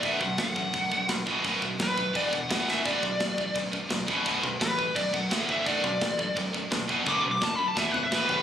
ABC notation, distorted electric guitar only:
X:1
M:4/4
L:1/8
Q:1/4=171
K:Bm
V:1 name="Distorted electric guitar" clef=bass
[B,,,F,,B,,] [B,,,F,,] [B,,,F,,] [B,,,F,,] [B,,,F,,] [B,,,F,,] [B,,,F,,] [B,,,F,,B,,] | [B,,,F,,B,,] [B,,,F,,] [B,,,F,,] [B,,,F,,] [E,,B,,E,] [E,,B,,] [E,,B,,E,] [E,,B,,E,] | [B,,,F,,B,,] [B,,,F,,] [B,,,F,,] [B,,,F,,] [B,,,F,,] [B,,,F,,] [B,,,F,,] [B,,,F,,B,,] | [B,,,F,,B,,] [B,,,F,,] [B,,,F,,] [B,,,F,,] [B,,,F,,] [B,,,F,,] [D,,A,,D,] [D,,A,,D,] |
[B,,,F,,B,,] [B,,,F,,] [B,,,F,,] [B,,,F,,] [B,,,F,,] [B,,,F,,] [B,,,F,,] [B,,,F,,B,,] | [B,,,F,,B,,] [B,,,F,,] [B,,,F,,] [B,,,F,,] [E,,B,,E,] [E,,B,,] [E,,B,,E,] [E,,B,,E,] |]